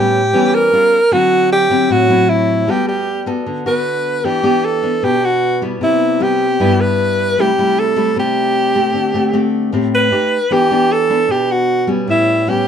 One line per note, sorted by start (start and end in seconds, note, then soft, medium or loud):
0.00 0.32 A2 medium
0.00 0.20 G3 soft
0.00 0.20 B3 soft
0.00 0.20 C#4 medium
0.00 0.56 G4 medium
0.33 0.71 E3 medium
0.33 0.71 G3 medium
0.33 0.71 B3 medium
0.33 0.71 C#4 medium
0.55 1.14 A#4 loud
0.72 0.98 G3 soft
0.72 0.98 C#4 soft
0.72 0.98 F4 medium
1.12 1.88 D3 medium
1.12 1.67 F#3 medium
1.12 1.68 C4 soft
1.12 1.68 E4 medium
1.12 1.51 F#4 loud
1.52 1.93 G4 medium
1.70 2.06 F#3 medium
1.70 2.07 C4 medium
1.70 2.07 E4 medium
1.90 2.66 A2 medium
1.90 2.31 F#4 loud
2.09 2.65 F#3 medium
2.09 2.65 C4 medium
2.09 2.66 E4 medium
2.29 2.72 E4 medium
2.67 3.44 G3 medium
2.67 3.07 B3 soft
2.67 3.07 F#4 medium
2.67 2.87 G4 loud
2.67 3.07 A4 medium
2.88 3.36 G4 medium
3.26 3.63 B3 medium
3.26 3.63 F#4 medium
3.26 3.63 A4 medium
3.46 4.23 D3 medium
3.66 4.22 B3 medium
3.66 4.22 F#4 medium
3.66 4.22 A4 medium
3.66 4.26 B4 medium
4.24 5.01 E3 medium
4.24 4.41 B3 soft
4.24 4.41 D4 medium
4.24 4.66 G4 medium
4.24 4.41 G4 medium
4.43 4.80 B3 medium
4.43 4.80 D4 medium
4.43 4.80 G4 medium
4.65 5.06 A4 medium
4.83 5.58 B3 medium
4.83 5.59 D4 medium
5.03 5.79 B2 medium
5.03 5.26 G4 medium
5.24 5.63 F#4 medium
5.62 6.17 G3 medium
5.62 6.17 B3 medium
5.62 6.18 E4 medium
5.81 6.58 C3 medium
5.81 6.24 E4 medium
6.20 6.46 G3 medium
6.20 6.46 B3 soft
6.20 6.46 E4 medium
6.20 6.82 G4 medium
6.60 7.36 G2 medium
6.60 7.35 G3 medium
6.60 7.35 B3 medium
6.60 7.35 E4 medium
6.81 7.42 B4 medium
7.38 8.15 C3 medium
7.38 7.50 G3 soft
7.38 7.50 A3 medium
7.38 7.50 E4 medium
7.38 7.81 G4 loud
7.58 7.94 G3 medium
7.58 7.94 A3 medium
7.58 7.94 E4 medium
7.79 8.17 A4 medium
7.96 8.72 G3 medium
7.96 8.72 A3 medium
7.96 8.72 E4 medium
8.16 8.93 C3 medium
8.16 9.63 G4 medium
8.75 9.11 A3 medium
8.75 9.11 C4 medium
8.75 9.12 G4 medium
8.94 9.71 D3 medium
9.14 9.31 A3 medium
9.14 9.31 C4 medium
9.14 9.31 G4 medium
9.33 9.70 A3 medium
9.33 9.70 C4 medium
9.33 9.70 G4 medium
9.72 10.10 A2 medium
9.72 10.10 A3 medium
9.72 10.11 C4 medium
9.72 10.11 G4 medium
9.95 10.54 B4 medium
10.11 10.37 A3 soft
10.11 10.37 D#4 medium
10.11 10.37 G4 medium
10.51 11.27 E3 medium
10.51 10.68 B3 medium
10.51 10.68 D4 soft
10.51 10.68 G4 medium
10.51 10.94 G4 loud
10.71 11.07 B3 medium
10.71 11.07 D4 medium
10.71 11.07 G4 medium
10.93 11.33 A4 medium
11.10 11.85 B3 medium
11.10 11.85 D4 medium
11.28 12.05 B2 medium
11.28 11.53 G4 medium
11.51 11.89 F#4 medium
11.87 12.43 G3 medium
11.87 12.44 B3 medium
11.87 12.44 C#4 medium
12.07 12.68 A2 medium
12.07 12.50 E4 medium
12.47 12.68 G3 soft
12.47 12.68 B3 soft
12.47 12.68 C#4 medium
12.47 12.68 G4 medium